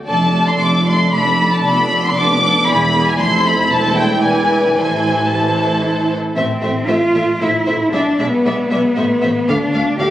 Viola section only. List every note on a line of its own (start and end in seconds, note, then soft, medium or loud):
0.08 0.34 A3 soft
0.08 0.34 D4 soft
0.35 0.60 A3 soft
0.35 0.60 D4 soft
0.61 0.87 A3 soft
0.61 0.87 D4 soft
0.88 1.13 A3 soft
0.88 1.12 D4 soft
1.14 1.39 A3 soft
1.14 1.39 D4 soft
1.40 1.65 A3 soft
1.40 1.64 D4 soft
1.65 1.90 B3 soft
1.65 1.91 D4 soft
1.92 2.16 B3 soft
1.92 2.16 D4 soft
2.17 2.42 B3 soft
2.17 2.42 D4 soft
2.43 2.67 B3 soft
2.43 2.68 D4 soft
2.68 2.93 B3 soft
2.68 2.93 E4 soft
2.94 3.20 B3 soft
2.94 3.19 E4 soft
3.20 3.68 A3 soft
3.20 3.68 E4 medium
3.72 4.23 A3 medium
3.72 4.23 E4 medium
4.24 4.76 E3 medium
4.24 4.76 E4 medium
4.77 5.29 E3 soft
4.77 5.29 E4 soft
5.30 6.15 E3 soft
5.30 6.15 E4 soft
6.37 6.45 A3 soft
6.63 6.71 A3 soft
6.89 6.97 A3 soft
7.15 7.23 A3 soft
7.41 7.49 A3 soft
7.67 7.75 A3 soft
7.93 8.01 G#3 soft
8.18 8.26 G#3 soft
8.45 8.53 G#3 soft
8.71 8.79 G#3 soft
8.97 9.05 A3 soft
9.23 9.31 A3 soft
9.49 9.57 A3 soft
9.75 9.83 A3 soft
10.01 10.09 A3 soft